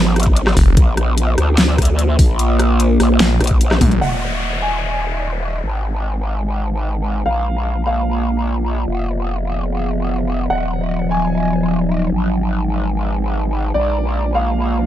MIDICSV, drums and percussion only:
0, 0, Header, 1, 2, 480
1, 0, Start_track
1, 0, Key_signature, -6, "minor"
1, 0, Tempo, 405405
1, 912, Time_signature, 4, 2, 24, 8
1, 17597, End_track
2, 0, Start_track
2, 0, Title_t, "Drums"
2, 191, Note_on_c, 9, 37, 56
2, 191, Note_on_c, 9, 42, 47
2, 232, Note_off_c, 9, 42, 0
2, 232, Note_on_c, 9, 42, 60
2, 271, Note_off_c, 9, 42, 0
2, 271, Note_on_c, 9, 42, 75
2, 310, Note_off_c, 9, 37, 0
2, 314, Note_on_c, 9, 36, 58
2, 390, Note_off_c, 9, 42, 0
2, 432, Note_on_c, 9, 42, 79
2, 433, Note_off_c, 9, 36, 0
2, 550, Note_off_c, 9, 42, 0
2, 554, Note_on_c, 9, 37, 80
2, 554, Note_on_c, 9, 38, 35
2, 671, Note_on_c, 9, 46, 94
2, 672, Note_off_c, 9, 37, 0
2, 672, Note_off_c, 9, 38, 0
2, 672, Note_on_c, 9, 36, 105
2, 790, Note_off_c, 9, 36, 0
2, 790, Note_off_c, 9, 46, 0
2, 912, Note_on_c, 9, 36, 114
2, 912, Note_on_c, 9, 42, 81
2, 1030, Note_off_c, 9, 36, 0
2, 1031, Note_off_c, 9, 42, 0
2, 1152, Note_on_c, 9, 37, 57
2, 1152, Note_on_c, 9, 42, 53
2, 1271, Note_off_c, 9, 37, 0
2, 1271, Note_off_c, 9, 42, 0
2, 1392, Note_on_c, 9, 42, 80
2, 1510, Note_off_c, 9, 42, 0
2, 1632, Note_on_c, 9, 37, 53
2, 1632, Note_on_c, 9, 42, 51
2, 1750, Note_off_c, 9, 37, 0
2, 1750, Note_off_c, 9, 42, 0
2, 1872, Note_on_c, 9, 38, 115
2, 1872, Note_on_c, 9, 42, 76
2, 1990, Note_off_c, 9, 38, 0
2, 1990, Note_off_c, 9, 42, 0
2, 2112, Note_on_c, 9, 36, 60
2, 2112, Note_on_c, 9, 37, 53
2, 2112, Note_on_c, 9, 42, 49
2, 2153, Note_off_c, 9, 42, 0
2, 2153, Note_on_c, 9, 42, 65
2, 2192, Note_off_c, 9, 42, 0
2, 2192, Note_on_c, 9, 42, 79
2, 2230, Note_off_c, 9, 36, 0
2, 2230, Note_off_c, 9, 37, 0
2, 2311, Note_off_c, 9, 42, 0
2, 2352, Note_on_c, 9, 42, 79
2, 2471, Note_off_c, 9, 42, 0
2, 2592, Note_on_c, 9, 36, 104
2, 2592, Note_on_c, 9, 46, 98
2, 2710, Note_off_c, 9, 36, 0
2, 2711, Note_off_c, 9, 46, 0
2, 2832, Note_on_c, 9, 42, 80
2, 2951, Note_off_c, 9, 42, 0
2, 3072, Note_on_c, 9, 37, 53
2, 3072, Note_on_c, 9, 42, 56
2, 3190, Note_off_c, 9, 37, 0
2, 3190, Note_off_c, 9, 42, 0
2, 3312, Note_on_c, 9, 42, 81
2, 3430, Note_off_c, 9, 42, 0
2, 3552, Note_on_c, 9, 37, 51
2, 3552, Note_on_c, 9, 46, 65
2, 3670, Note_off_c, 9, 37, 0
2, 3670, Note_off_c, 9, 46, 0
2, 3791, Note_on_c, 9, 38, 113
2, 3791, Note_on_c, 9, 42, 82
2, 3910, Note_off_c, 9, 38, 0
2, 3910, Note_off_c, 9, 42, 0
2, 4032, Note_on_c, 9, 37, 54
2, 4032, Note_on_c, 9, 42, 49
2, 4073, Note_off_c, 9, 42, 0
2, 4073, Note_on_c, 9, 42, 66
2, 4112, Note_off_c, 9, 42, 0
2, 4112, Note_on_c, 9, 42, 84
2, 4150, Note_off_c, 9, 37, 0
2, 4154, Note_on_c, 9, 36, 58
2, 4230, Note_off_c, 9, 42, 0
2, 4272, Note_off_c, 9, 36, 0
2, 4272, Note_on_c, 9, 42, 84
2, 4390, Note_off_c, 9, 42, 0
2, 4395, Note_on_c, 9, 37, 75
2, 4395, Note_on_c, 9, 38, 34
2, 4395, Note_on_c, 9, 48, 51
2, 4512, Note_on_c, 9, 36, 108
2, 4512, Note_on_c, 9, 46, 102
2, 4512, Note_on_c, 9, 47, 80
2, 4513, Note_off_c, 9, 37, 0
2, 4513, Note_off_c, 9, 38, 0
2, 4513, Note_off_c, 9, 48, 0
2, 4630, Note_off_c, 9, 36, 0
2, 4631, Note_off_c, 9, 46, 0
2, 4631, Note_off_c, 9, 47, 0
2, 4634, Note_on_c, 9, 42, 37
2, 4634, Note_on_c, 9, 45, 77
2, 4753, Note_off_c, 9, 42, 0
2, 4753, Note_off_c, 9, 45, 0
2, 17597, End_track
0, 0, End_of_file